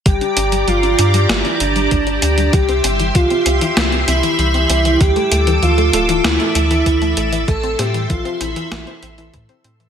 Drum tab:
HH |xxxxxxxxxxxxxxxx|xxxxxxxxxxxxxxxx|xxxxxxxxxxxxxxxx|xxxxxxxxxxxxxxxx|
SD |--------o-------|--------o-------|--------o-------|--o-----o-------|
BD |o-----------o---|o---o-----------|o-----------o---|o---o-------o---|